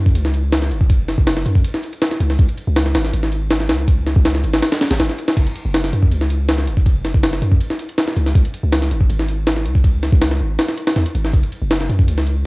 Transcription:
0.00 0.17 F#2 medium
0.06 kick loud
0.15 0.73 C#2 loud
0.15 ride medium
0.25 snare soft
0.34 ride medium
0.52 snare loud
0.52 ride loud
0.62 snare soft
0.71 1.17 F#1 medium
0.71 ride medium
0.81 kick loud
0.90 kick loud
0.90 ride medium
1.09 snare soft
1.09 ride medium
1.18 1.44 F#1 loud
1.18 kick loud
1.27 snare loud
1.27 ride medium
1.37 snare soft
1.46 1.63 F#2 medium
1.46 ride medium
1.55 kick loud
1.64 ride loud
1.74 snare soft
1.83 ride medium
1.93 ride soft
2.02 snare loud
2.02 ride medium
2.11 snare medium
2.20 2.37 C#2 loud
2.20 ride medium
2.30 snare soft
2.39 2.48 C#2 loud
2.39 kick loud
2.39 ride medium
2.48 ride soft
2.57 ride medium
2.67 2.93 C#2 loud
2.76 snare loud
2.76 ride medium
2.86 snare soft
2.95 3.12 G#1 medium
2.95 snare loud
2.95 ride medium
3.05 snare soft
3.13 3.71 G#1 loud
3.13 ride loud
3.23 snare soft
3.32 ride medium
3.51 snare loud
3.51 ride loud
3.60 snare soft
3.69 4.15 C#2 medium
3.69 snare loud
3.69 ride medium
3.88 kick loud
3.88 ride medium
4.07 snare soft
4.07 ride medium
4.16 4.42 C#2 loud
4.16 kick loud
4.25 snare loud
4.25 ride medium
4.35 snare soft
4.44 4.61 G#1 medium
4.44 ride medium
4.54 snare loud
4.54 ride medium
4.63 snare loud
4.63 ride medium
4.72 snare loud
4.72 ride medium
4.81 snare loud
4.81 ride medium
4.91 4.99 G#1 loud
4.91 snare loud
4.91 ride medium
5.00 5.08 G#1 loud
5.00 snare loud
5.00 ride medium
5.10 snare soft
5.18 ride medium
5.28 snare loud
5.28 ride medium
5.37 5.46 F#1 loud
5.37 kick loud
5.37 crash medium
5.37 ride medium
5.47 ride soft
5.56 ride medium
5.65 5.91 F#1 loud
5.74 snare loud
5.74 ride medium
5.84 snare soft
5.93 6.13 F#2 medium
5.93 ride medium
6.03 kick loud
6.11 6.69 C#2 loud
6.11 ride medium
6.21 snare soft
6.30 ride medium
6.49 snare loud
6.49 ride medium
6.58 snare soft
6.67 7.13 F#1 medium
6.67 ride medium
6.77 kick loud
6.86 kick loud
6.86 ride medium
7.05 snare soft
7.05 ride medium
7.14 7.41 F#1 loud
7.14 kick loud
7.23 snare loud
7.23 ride medium
7.33 snare soft
7.42 7.59 F#2 medium
7.42 ride medium
7.52 kick loud
7.61 ride medium
7.70 snare soft
7.79 ride medium
7.89 ride soft
7.98 snare loud
7.98 ride loud
8.08 snare medium
8.16 8.33 C#2 loud
8.16 ride medium
8.26 snare soft
8.35 8.44 C#2 loud
8.35 kick loud
8.35 ride medium
8.45 ride soft
8.54 ride medium
8.63 8.90 C#2 loud
8.72 snare loud
8.72 ride medium
8.82 snare soft
8.91 9.08 G#1 medium
8.91 ride medium
9.01 kick loud
9.10 9.67 G#1 loud
9.10 ride medium
9.19 snare soft
9.28 ride medium
9.47 snare loud
9.47 ride medium
9.57 snare soft
9.65 10.11 C#2 medium
9.65 ride medium
9.75 kick loud
9.84 kick loud
9.84 ride medium
10.03 snare soft
10.03 ride medium
10.12 10.39 C#2 loud
10.12 kick loud
10.22 snare loud
10.22 ride medium
10.31 snare soft
10.40 10.57 G#1 medium
10.59 snare loud
10.59 ride medium
10.69 snare soft
10.77 ride medium
10.87 snare loud
10.87 ride medium
10.96 11.05 E2 loud
10.96 snare soft
11.06 ride medium
11.15 11.32 G#1 loud
11.15 ride medium
11.25 snare soft
11.33 11.42 F#1 loud
11.33 kick loud
11.33 ride medium
11.43 ride soft
11.52 ride medium
11.62 11.88 F#1 loud
11.71 snare loud
11.71 ride medium
11.80 snare soft
11.89 12.09 F#2 medium
11.89 ride medium
11.99 kick loud
12.08 12.46 C#2 loud
12.08 ride medium
12.18 snare medium
12.27 ride medium

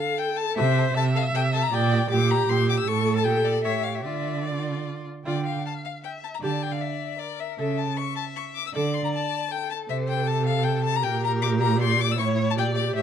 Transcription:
0.00 0.59 A4 loud
0.00 0.20 F5 loud
0.18 0.38 G5 loud
0.37 0.56 A5 loud
0.56 0.90 C3 loud
0.56 0.64 A4 medium
0.56 0.97 C5 loud
0.56 0.95 E5 loud
0.76 0.84 A4 medium
0.94 1.29 C3 loud
0.94 1.03 A4 medium
0.94 1.72 E5 loud
0.94 1.04 A5 loud
1.14 1.22 A4 medium
1.14 1.23 F5 loud
1.33 1.67 C3 loud
1.33 1.42 A4 medium
1.33 1.42 G5 loud
1.53 1.61 A4 medium
1.53 1.65 A5 loud
1.63 1.76 A#5 loud
1.72 2.06 A#2 loud
1.72 1.80 G4 medium
1.72 2.10 D5 loud
1.72 2.10 G5 loud
1.92 1.99 G4 loud
2.10 2.44 A#2 loud
2.10 2.89 G4 loud
2.10 2.18 G4 loud
2.10 2.33 D6 loud
2.30 2.37 G4 medium
2.30 2.51 A#5 loud
2.48 2.82 A#2 loud
2.48 2.57 G4 medium
2.48 2.68 C6 loud
2.69 2.76 G4 medium
2.69 2.78 D6 loud
2.79 2.89 E6 loud
2.87 3.27 A2 loud
2.87 3.67 A4 loud
2.87 3.23 A4 loud
2.87 3.15 C#6 loud
3.16 3.26 A5 loud
3.24 3.66 A#2 loud
3.24 3.64 G4 medium
3.24 3.46 G5 loud
3.45 3.63 D5 loud
3.64 4.06 A2 medium
3.64 4.07 G4 medium
3.64 4.04 C#5 medium
3.64 3.85 E5 loud
3.84 3.96 F5 loud
3.95 4.03 E5 medium
4.04 5.06 D3 medium
4.04 4.44 F4 medium
4.04 5.04 D5 medium
4.04 4.47 E5 medium
4.45 5.04 F4 medium
4.45 4.85 D5 medium
5.26 5.59 D3 medium
5.26 5.44 F4 medium
5.26 5.45 D5 loud
5.26 5.67 G5 medium
5.46 5.65 F5 medium
5.66 6.03 F5 medium
5.66 5.74 A5 medium
5.85 5.92 F5 loud
6.04 6.42 E5 medium
6.04 6.12 G5 medium
6.24 6.27 A5 loud
6.35 6.38 A#5 medium
6.41 6.74 D3 medium
6.41 6.61 G4 medium
6.41 7.19 D5 medium
6.41 6.64 A5 loud
6.63 6.74 G5 loud
6.72 6.82 F5 medium
6.81 7.20 E5 loud
7.19 7.59 A#4 medium
7.19 7.41 D5 loud
7.40 7.58 E5 loud
7.58 7.92 C#3 medium
7.58 7.99 A4 medium
7.58 7.77 A4 medium
7.58 7.79 E5 medium
7.78 7.99 A5 loud
7.97 8.75 E5 medium
7.97 8.15 C#6 loud
8.16 8.24 A5 loud
8.36 8.44 C#6 loud
8.55 8.65 D6 loud
8.67 8.70 E6 loud
8.74 9.06 D3 loud
8.74 8.93 A4 medium
8.74 9.50 D5 loud
8.74 8.95 D6 loud
8.94 9.03 C6 loud
9.05 9.08 A#5 loud
9.14 9.53 A5 loud
9.51 9.90 A4 medium
9.51 9.70 G5 loud
9.70 9.78 A5 loud
9.89 11.05 C3 loud
9.89 11.00 A4 medium
9.89 10.25 C5 medium
9.89 9.97 E5 loud
10.08 10.29 G5 loud
10.26 11.02 A4 loud
10.26 10.46 A5 loud
10.46 10.65 F5 loud
10.64 10.84 G5 loud
10.84 10.98 A5 loud
10.96 11.05 A#5 loud
11.03 12.19 A#2 loud
11.03 12.15 G4 loud
11.03 11.79 A#4 loud
11.03 11.23 G5 loud
11.24 11.32 A#5 loud
11.42 11.50 D6 loud
11.61 11.80 A#5 loud
11.80 12.18 D5 loud
11.80 12.02 C6 loud
12.01 12.13 D6 loud
12.12 12.18 E6 loud
12.18 12.59 A2 loud
12.18 12.54 E4 loud
12.18 12.57 C#5 loud
12.18 12.27 C#6 loud
12.51 12.54 A5 loud
12.57 12.96 A#2 loud
12.57 13.02 G4 loud
12.57 12.95 D5 loud
12.57 12.66 G5 loud
12.76 12.95 D5 loud
12.96 13.02 A2 medium
12.96 13.02 C#5 loud
12.96 13.02 E5 loud

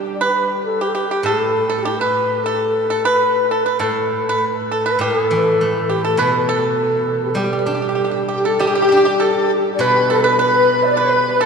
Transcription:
0.00 0.81 G3 soft
0.00 0.52 D4 soft
0.14 0.24 D5 medium
0.21 0.77 B4 medium
0.21 0.65 B4 medium
0.65 0.83 A4 medium
0.81 0.93 G4 medium
0.81 0.90 G4 medium
0.89 0.97 A4 medium
0.95 1.09 G4 medium
0.95 1.10 G4 medium
1.10 1.26 G4 medium
1.10 1.25 G4 medium
1.23 3.04 A2 soft
1.23 1.84 A4 medium
1.23 1.66 A4 medium
1.70 1.83 A4 medium
1.83 1.87 D4 soft
1.83 1.85 G4 medium
1.83 1.99 G4 medium
1.88 1.92 E4 soft
1.93 1.95 G4 soft
1.93 1.98 A4 soft
1.99 2.46 B4 medium
1.99 2.42 B4 medium
2.44 3.07 A4 medium
2.44 2.87 A4 medium
2.90 3.04 A4 medium
3.05 3.47 B4 medium
3.05 3.52 B4 medium
3.51 3.66 A4 medium
3.51 3.65 A4 medium
3.64 3.80 B4 medium
3.79 4.97 A2 soft
3.79 4.26 A4 medium
3.79 4.41 A4 medium
4.29 4.44 B4 medium
4.72 4.85 A4 medium
4.72 4.89 A4 medium
4.86 5.00 B4 medium
4.86 5.01 B4 medium
4.99 6.18 A2 soft
4.99 5.26 G4 medium
4.99 5.92 A4 medium
5.26 5.86 A4 medium
5.31 6.49 E3 soft
5.61 6.79 A3 soft
5.89 6.03 G4 medium
5.89 6.05 G4 medium
6.05 6.18 A4 medium
6.05 6.21 A4 medium
6.17 7.98 B2 soft
6.17 6.46 B4 medium
6.17 6.42 B4 medium
6.42 6.50 B4 medium
6.49 7.33 A4 medium
6.49 7.23 A4 medium
7.25 7.32 G4 medium
7.30 7.41 A4 medium
7.35 8.58 G3 soft
7.35 7.43 G4 soft
7.39 8.30 G4 medium
7.44 7.51 G4 soft
7.53 7.58 G4 soft
7.59 7.65 G4 soft
7.66 8.89 D4 soft
7.66 7.73 G4 soft
7.75 7.81 G4 soft
7.82 7.88 G4 soft
7.89 7.94 G4 soft
7.95 8.03 G4 soft
8.04 8.10 G4 soft
8.11 8.19 G4 soft
8.28 8.43 G4 medium
8.28 8.49 G4 medium
8.28 8.59 G4 medium
8.28 8.46 G4 medium
8.45 8.62 A4 medium
8.45 8.59 A4 medium
8.45 8.61 A4 medium
8.59 10.40 G3 medium
8.59 9.47 G4 medium
8.59 8.66 G4 medium
8.59 9.23 G4 medium
8.59 9.48 G4 medium
8.67 8.74 G4 medium
8.75 8.81 G4 medium
8.82 8.88 G4 medium
8.89 10.12 D4 soft
8.89 8.96 G4 medium
8.97 9.04 G4 medium
9.05 9.12 G4 medium
9.20 9.48 A4 medium
9.20 9.51 A4 medium
9.74 9.83 D5 medium
9.79 11.46 B2 medium
9.79 10.36 B4 medium
9.79 10.08 B4 medium
9.79 10.12 B4 medium
9.79 10.13 B4 medium
10.10 10.23 A4 medium
10.10 10.42 A4 medium
10.10 10.28 A4 medium
10.24 10.38 B4 medium
10.24 10.41 B4 medium
10.39 10.94 B4 medium
10.39 10.84 B4 medium
10.39 10.86 B4 medium
10.83 10.89 D5 medium
10.83 10.91 D5 medium
10.83 10.87 E5 medium
10.87 10.92 B4 medium
10.87 10.97 D5 loud
10.92 11.00 D5 medium
10.97 11.38 B4 medium
10.97 11.42 B4 medium
10.97 11.44 B4 medium
11.41 11.46 A4 medium

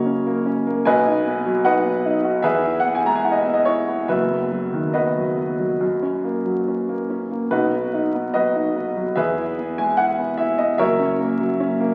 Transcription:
0.00 0.88 C#3 soft
0.00 0.88 F#3 soft
0.00 0.27 A#3 medium
0.00 0.06 C#4 medium
0.00 0.42 F#4 medium
0.00 0.42 A#4 medium
0.00 0.45 C#5 loud
0.00 0.87 D#5 medium
0.06 0.38 C#4 medium
0.27 0.58 A#3 medium
0.46 0.78 C#4 medium
0.67 0.87 A#3 medium
0.85 2.40 B1 medium
0.85 1.61 B4 medium
0.85 1.61 D#5 medium
0.85 1.65 G#5 loud
1.07 1.38 D#4 medium
1.27 1.58 B3 medium
1.46 1.77 F#3 medium
1.65 1.97 D#4 medium
1.65 2.40 B4 medium
1.65 2.40 D#5 medium
1.65 2.44 F#5 loud
1.85 2.16 B3 medium
2.05 2.36 D#4 medium
2.24 2.44 F#4 medium
2.42 4.05 E2 medium
2.42 2.78 G#4 medium
2.42 2.78 B4 medium
2.42 2.79 E5 loud
2.65 2.97 E4 medium
2.80 2.96 F#5 loud
2.85 3.17 B3 medium
2.95 3.07 G#5 medium
3.04 3.37 G#3 medium
3.04 3.16 A#5 medium
3.16 3.25 G#5 medium
3.24 3.58 E4 medium
3.24 3.33 F#5 medium
3.32 3.42 D#5 medium
3.42 3.54 E5 medium
3.47 3.79 B3 soft
3.54 3.66 D#5 medium
3.65 4.00 E4 medium
3.65 4.08 C#5 medium
3.88 4.09 B3 medium
4.08 5.77 F#1 medium
4.08 5.77 F#2 medium
4.08 4.91 B4 medium
4.08 4.95 E5 medium
4.30 4.65 B3 medium
4.52 4.86 F#3 medium
4.73 5.08 D#3 soft
4.93 5.29 B3 medium
4.93 7.06 F#4 medium
4.93 7.06 B4 medium
4.93 7.10 D#5 medium
5.16 5.51 F#3 soft
5.37 5.72 B3 soft
5.59 5.81 F#3 soft
5.81 7.48 F#2 medium
6.02 6.37 C#4 soft
6.24 6.59 A#3 soft
6.46 6.80 F#3 soft
6.68 7.02 C#4 soft
6.89 7.23 A#3 soft
7.10 7.44 C#4 soft
7.31 7.52 A#3 soft
7.51 9.13 B1 soft
7.51 9.13 B2 medium
7.51 7.92 D#4 medium
7.51 8.31 F#4 medium
7.51 8.34 B4 medium
7.73 8.06 B3 soft
7.94 8.27 D#4 medium
8.15 8.48 B3 soft
8.34 8.68 F#3 medium
8.34 9.13 F#4 medium
8.34 9.14 B4 medium
8.34 9.17 D#5 medium
8.55 8.88 D#4 soft
8.76 9.09 B3 soft
8.97 9.17 F#3 soft
9.15 10.76 E2 medium
9.15 9.74 G#4 medium
9.15 9.74 B4 medium
9.15 9.78 E5 medium
9.38 9.70 E4 medium
9.59 9.91 B3 soft
9.78 10.11 G#3 soft
9.78 9.98 G#5 medium
9.97 10.31 E4 soft
9.97 10.39 F#5 loud
10.19 10.51 B3 medium
10.38 10.72 E4 medium
10.38 10.59 E5 medium
10.58 10.80 B3 soft
10.58 10.79 D#5 medium
10.78 11.94 F#1 medium
10.78 11.94 F#2 medium
10.78 11.94 A#4 medium
10.78 11.94 C#5 medium
10.78 11.94 E5 loud
10.99 11.32 C#4 medium
11.19 11.52 A#3 medium
11.40 11.73 F#3 medium
11.60 11.94 C#4 medium
11.80 11.94 A#3 medium

